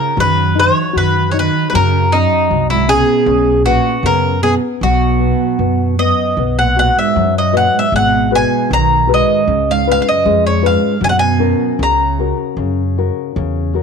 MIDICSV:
0, 0, Header, 1, 5, 480
1, 0, Start_track
1, 0, Key_signature, 5, "major"
1, 0, Tempo, 773196
1, 112, Time_signature, 2, 2, 24, 8
1, 6831, Tempo, 782269
1, 8563, End_track
2, 0, Start_track
2, 0, Title_t, "Bouzouki"
2, 0, Program_c, 0, 25
2, 0, Note_on_c, 0, 70, 86
2, 123, Note_off_c, 0, 70, 0
2, 126, Note_on_c, 0, 71, 94
2, 367, Note_off_c, 0, 71, 0
2, 369, Note_on_c, 0, 73, 92
2, 603, Note_off_c, 0, 73, 0
2, 605, Note_on_c, 0, 71, 88
2, 805, Note_off_c, 0, 71, 0
2, 816, Note_on_c, 0, 73, 67
2, 849, Note_off_c, 0, 73, 0
2, 864, Note_on_c, 0, 71, 90
2, 1046, Note_off_c, 0, 71, 0
2, 1053, Note_on_c, 0, 71, 67
2, 1084, Note_off_c, 0, 71, 0
2, 1087, Note_on_c, 0, 70, 100
2, 1319, Note_on_c, 0, 63, 91
2, 1330, Note_off_c, 0, 70, 0
2, 1653, Note_off_c, 0, 63, 0
2, 1677, Note_on_c, 0, 64, 81
2, 1788, Note_off_c, 0, 64, 0
2, 1795, Note_on_c, 0, 68, 100
2, 2244, Note_off_c, 0, 68, 0
2, 2269, Note_on_c, 0, 66, 93
2, 2516, Note_off_c, 0, 66, 0
2, 2519, Note_on_c, 0, 70, 95
2, 2748, Note_off_c, 0, 70, 0
2, 2750, Note_on_c, 0, 68, 88
2, 2815, Note_off_c, 0, 68, 0
2, 2999, Note_on_c, 0, 66, 77
2, 3696, Note_off_c, 0, 66, 0
2, 3719, Note_on_c, 0, 75, 73
2, 4086, Note_off_c, 0, 75, 0
2, 4089, Note_on_c, 0, 78, 78
2, 4200, Note_off_c, 0, 78, 0
2, 4216, Note_on_c, 0, 78, 83
2, 4334, Note_off_c, 0, 78, 0
2, 4337, Note_on_c, 0, 76, 71
2, 4556, Note_off_c, 0, 76, 0
2, 4583, Note_on_c, 0, 75, 76
2, 4696, Note_off_c, 0, 75, 0
2, 4699, Note_on_c, 0, 78, 85
2, 4817, Note_off_c, 0, 78, 0
2, 4835, Note_on_c, 0, 76, 81
2, 4937, Note_off_c, 0, 76, 0
2, 4940, Note_on_c, 0, 78, 91
2, 5158, Note_off_c, 0, 78, 0
2, 5186, Note_on_c, 0, 80, 98
2, 5419, Note_off_c, 0, 80, 0
2, 5422, Note_on_c, 0, 82, 96
2, 5660, Note_off_c, 0, 82, 0
2, 5673, Note_on_c, 0, 75, 91
2, 6028, Note_off_c, 0, 75, 0
2, 6028, Note_on_c, 0, 77, 80
2, 6138, Note_off_c, 0, 77, 0
2, 6155, Note_on_c, 0, 77, 91
2, 6212, Note_off_c, 0, 77, 0
2, 6219, Note_on_c, 0, 77, 68
2, 6252, Note_off_c, 0, 77, 0
2, 6261, Note_on_c, 0, 75, 78
2, 6494, Note_off_c, 0, 75, 0
2, 6497, Note_on_c, 0, 73, 77
2, 6609, Note_off_c, 0, 73, 0
2, 6619, Note_on_c, 0, 77, 89
2, 6852, Note_off_c, 0, 77, 0
2, 6855, Note_on_c, 0, 80, 94
2, 6883, Note_off_c, 0, 80, 0
2, 6886, Note_on_c, 0, 78, 80
2, 6924, Note_off_c, 0, 78, 0
2, 6947, Note_on_c, 0, 80, 95
2, 7334, Note_off_c, 0, 80, 0
2, 7337, Note_on_c, 0, 82, 73
2, 7664, Note_off_c, 0, 82, 0
2, 8563, End_track
3, 0, Start_track
3, 0, Title_t, "Nylon-string guitar"
3, 0, Program_c, 1, 24
3, 0, Note_on_c, 1, 65, 51
3, 101, Note_on_c, 1, 54, 58
3, 103, Note_off_c, 1, 65, 0
3, 342, Note_on_c, 1, 63, 48
3, 576, Note_off_c, 1, 63, 0
3, 578, Note_on_c, 1, 66, 50
3, 821, Note_off_c, 1, 66, 0
3, 830, Note_on_c, 1, 63, 52
3, 1048, Note_off_c, 1, 54, 0
3, 1068, Note_off_c, 1, 63, 0
3, 1070, Note_on_c, 1, 54, 66
3, 1319, Note_on_c, 1, 61, 54
3, 1551, Note_off_c, 1, 54, 0
3, 1552, Note_off_c, 1, 61, 0
3, 1558, Note_on_c, 1, 54, 52
3, 1787, Note_on_c, 1, 61, 55
3, 1790, Note_off_c, 1, 54, 0
3, 2021, Note_off_c, 1, 61, 0
3, 2031, Note_on_c, 1, 61, 69
3, 2272, Note_on_c, 1, 71, 57
3, 2503, Note_off_c, 1, 71, 0
3, 2514, Note_on_c, 1, 59, 53
3, 2745, Note_off_c, 1, 59, 0
3, 2751, Note_on_c, 1, 59, 51
3, 2962, Note_off_c, 1, 61, 0
3, 2982, Note_off_c, 1, 59, 0
3, 2998, Note_on_c, 1, 54, 63
3, 3225, Note_on_c, 1, 59, 49
3, 3462, Note_off_c, 1, 59, 0
3, 3475, Note_on_c, 1, 59, 50
3, 3710, Note_off_c, 1, 59, 0
3, 3718, Note_on_c, 1, 59, 46
3, 3941, Note_off_c, 1, 54, 0
3, 3955, Note_off_c, 1, 59, 0
3, 3963, Note_on_c, 1, 59, 60
3, 4198, Note_on_c, 1, 66, 47
3, 4203, Note_on_c, 1, 78, 53
3, 4204, Note_on_c, 1, 71, 44
3, 4434, Note_off_c, 1, 59, 0
3, 4443, Note_on_c, 1, 54, 63
3, 4587, Note_off_c, 1, 66, 0
3, 4589, Note_off_c, 1, 78, 0
3, 4590, Note_off_c, 1, 71, 0
3, 4672, Note_on_c, 1, 66, 45
3, 4675, Note_on_c, 1, 71, 41
3, 4679, Note_on_c, 1, 75, 53
3, 4871, Note_off_c, 1, 66, 0
3, 4873, Note_off_c, 1, 71, 0
3, 4875, Note_off_c, 1, 75, 0
3, 4912, Note_off_c, 1, 54, 0
3, 4924, Note_on_c, 1, 56, 59
3, 5155, Note_on_c, 1, 66, 49
3, 5158, Note_on_c, 1, 68, 47
3, 5164, Note_on_c, 1, 71, 53
3, 5391, Note_off_c, 1, 56, 0
3, 5395, Note_on_c, 1, 51, 65
3, 5543, Note_off_c, 1, 66, 0
3, 5543, Note_off_c, 1, 68, 0
3, 5548, Note_off_c, 1, 71, 0
3, 5631, Note_on_c, 1, 66, 50
3, 5635, Note_on_c, 1, 68, 43
3, 5640, Note_on_c, 1, 71, 53
3, 5829, Note_off_c, 1, 66, 0
3, 5829, Note_off_c, 1, 68, 0
3, 5834, Note_off_c, 1, 71, 0
3, 5864, Note_off_c, 1, 51, 0
3, 5887, Note_on_c, 1, 49, 59
3, 6128, Note_on_c, 1, 65, 50
3, 6130, Note_on_c, 1, 71, 56
3, 6131, Note_on_c, 1, 61, 50
3, 6347, Note_off_c, 1, 49, 0
3, 6366, Note_on_c, 1, 56, 68
3, 6504, Note_off_c, 1, 71, 0
3, 6505, Note_off_c, 1, 65, 0
3, 6506, Note_off_c, 1, 61, 0
3, 6592, Note_on_c, 1, 61, 46
3, 6595, Note_on_c, 1, 65, 45
3, 6600, Note_on_c, 1, 71, 52
3, 6785, Note_off_c, 1, 61, 0
3, 6786, Note_off_c, 1, 65, 0
3, 6790, Note_off_c, 1, 71, 0
3, 6824, Note_off_c, 1, 56, 0
3, 6833, Note_on_c, 1, 54, 61
3, 7071, Note_on_c, 1, 61, 48
3, 7074, Note_on_c, 1, 66, 47
3, 7074, Note_on_c, 1, 70, 55
3, 7299, Note_off_c, 1, 54, 0
3, 7314, Note_on_c, 1, 49, 59
3, 7458, Note_off_c, 1, 61, 0
3, 7459, Note_off_c, 1, 66, 0
3, 7460, Note_off_c, 1, 70, 0
3, 7557, Note_on_c, 1, 61, 44
3, 7561, Note_on_c, 1, 66, 44
3, 7566, Note_on_c, 1, 70, 51
3, 7784, Note_off_c, 1, 49, 0
3, 7797, Note_on_c, 1, 49, 55
3, 7944, Note_off_c, 1, 61, 0
3, 7945, Note_off_c, 1, 66, 0
3, 7949, Note_off_c, 1, 70, 0
3, 8041, Note_on_c, 1, 61, 49
3, 8045, Note_on_c, 1, 66, 42
3, 8047, Note_on_c, 1, 70, 54
3, 8264, Note_off_c, 1, 49, 0
3, 8277, Note_on_c, 1, 49, 61
3, 8422, Note_off_c, 1, 61, 0
3, 8425, Note_off_c, 1, 66, 0
3, 8425, Note_off_c, 1, 70, 0
3, 8507, Note_on_c, 1, 61, 47
3, 8514, Note_on_c, 1, 66, 45
3, 8516, Note_on_c, 1, 70, 52
3, 8563, Note_off_c, 1, 49, 0
3, 8563, Note_off_c, 1, 61, 0
3, 8563, Note_off_c, 1, 66, 0
3, 8563, Note_off_c, 1, 70, 0
3, 8563, End_track
4, 0, Start_track
4, 0, Title_t, "Cello"
4, 0, Program_c, 2, 42
4, 0, Note_on_c, 2, 49, 83
4, 109, Note_off_c, 2, 49, 0
4, 126, Note_on_c, 2, 51, 78
4, 346, Note_off_c, 2, 51, 0
4, 360, Note_on_c, 2, 52, 75
4, 583, Note_off_c, 2, 52, 0
4, 597, Note_on_c, 2, 51, 70
4, 781, Note_off_c, 2, 51, 0
4, 797, Note_on_c, 2, 52, 56
4, 836, Note_off_c, 2, 52, 0
4, 849, Note_on_c, 2, 51, 82
4, 1028, Note_off_c, 2, 51, 0
4, 1052, Note_on_c, 2, 51, 60
4, 1085, Note_off_c, 2, 51, 0
4, 1092, Note_on_c, 2, 49, 85
4, 1309, Note_off_c, 2, 49, 0
4, 1335, Note_on_c, 2, 42, 84
4, 1662, Note_off_c, 2, 42, 0
4, 1685, Note_on_c, 2, 44, 71
4, 1789, Note_off_c, 2, 44, 0
4, 1793, Note_on_c, 2, 47, 88
4, 2243, Note_off_c, 2, 47, 0
4, 2264, Note_on_c, 2, 46, 84
4, 2489, Note_off_c, 2, 46, 0
4, 2506, Note_on_c, 2, 49, 74
4, 2731, Note_off_c, 2, 49, 0
4, 2741, Note_on_c, 2, 47, 76
4, 2851, Note_off_c, 2, 47, 0
4, 2974, Note_on_c, 2, 47, 72
4, 3683, Note_off_c, 2, 47, 0
4, 3720, Note_on_c, 2, 42, 67
4, 4061, Note_off_c, 2, 42, 0
4, 4095, Note_on_c, 2, 46, 64
4, 4203, Note_off_c, 2, 46, 0
4, 4218, Note_on_c, 2, 46, 66
4, 4325, Note_off_c, 2, 46, 0
4, 4329, Note_on_c, 2, 44, 67
4, 4552, Note_off_c, 2, 44, 0
4, 4571, Note_on_c, 2, 42, 66
4, 4680, Note_off_c, 2, 42, 0
4, 4684, Note_on_c, 2, 46, 74
4, 4797, Note_off_c, 2, 46, 0
4, 4805, Note_on_c, 2, 44, 67
4, 4919, Note_off_c, 2, 44, 0
4, 4933, Note_on_c, 2, 47, 79
4, 5155, Note_off_c, 2, 47, 0
4, 5183, Note_on_c, 2, 47, 78
4, 5399, Note_off_c, 2, 47, 0
4, 5426, Note_on_c, 2, 51, 78
4, 5639, Note_off_c, 2, 51, 0
4, 5649, Note_on_c, 2, 44, 80
4, 5981, Note_off_c, 2, 44, 0
4, 6011, Note_on_c, 2, 44, 70
4, 6118, Note_off_c, 2, 44, 0
4, 6143, Note_on_c, 2, 44, 75
4, 6202, Note_off_c, 2, 44, 0
4, 6206, Note_on_c, 2, 44, 49
4, 6242, Note_off_c, 2, 44, 0
4, 6263, Note_on_c, 2, 42, 67
4, 6473, Note_off_c, 2, 42, 0
4, 6490, Note_on_c, 2, 41, 65
4, 6594, Note_off_c, 2, 41, 0
4, 6609, Note_on_c, 2, 44, 78
4, 6825, Note_off_c, 2, 44, 0
4, 6853, Note_on_c, 2, 49, 79
4, 6884, Note_off_c, 2, 49, 0
4, 6890, Note_on_c, 2, 46, 63
4, 6924, Note_off_c, 2, 46, 0
4, 6938, Note_on_c, 2, 47, 85
4, 7298, Note_off_c, 2, 47, 0
4, 7331, Note_on_c, 2, 49, 62
4, 7661, Note_off_c, 2, 49, 0
4, 8563, End_track
5, 0, Start_track
5, 0, Title_t, "Upright bass"
5, 0, Program_c, 3, 32
5, 106, Note_on_c, 3, 42, 96
5, 423, Note_off_c, 3, 42, 0
5, 595, Note_on_c, 3, 42, 79
5, 909, Note_off_c, 3, 42, 0
5, 1083, Note_on_c, 3, 42, 102
5, 1394, Note_off_c, 3, 42, 0
5, 1557, Note_on_c, 3, 36, 90
5, 1866, Note_off_c, 3, 36, 0
5, 2025, Note_on_c, 3, 35, 103
5, 2337, Note_off_c, 3, 35, 0
5, 2501, Note_on_c, 3, 42, 93
5, 2815, Note_off_c, 3, 42, 0
5, 2987, Note_on_c, 3, 35, 99
5, 3301, Note_off_c, 3, 35, 0
5, 3469, Note_on_c, 3, 42, 86
5, 3788, Note_off_c, 3, 42, 0
5, 3953, Note_on_c, 3, 35, 89
5, 4272, Note_off_c, 3, 35, 0
5, 4444, Note_on_c, 3, 42, 93
5, 4758, Note_off_c, 3, 42, 0
5, 4917, Note_on_c, 3, 32, 93
5, 5232, Note_off_c, 3, 32, 0
5, 5405, Note_on_c, 3, 35, 101
5, 5716, Note_off_c, 3, 35, 0
5, 5882, Note_on_c, 3, 37, 99
5, 6191, Note_off_c, 3, 37, 0
5, 6366, Note_on_c, 3, 41, 101
5, 6673, Note_off_c, 3, 41, 0
5, 6833, Note_on_c, 3, 42, 95
5, 7145, Note_off_c, 3, 42, 0
5, 7314, Note_on_c, 3, 37, 94
5, 7629, Note_off_c, 3, 37, 0
5, 7790, Note_on_c, 3, 42, 91
5, 8105, Note_off_c, 3, 42, 0
5, 8277, Note_on_c, 3, 40, 96
5, 8563, Note_off_c, 3, 40, 0
5, 8563, End_track
0, 0, End_of_file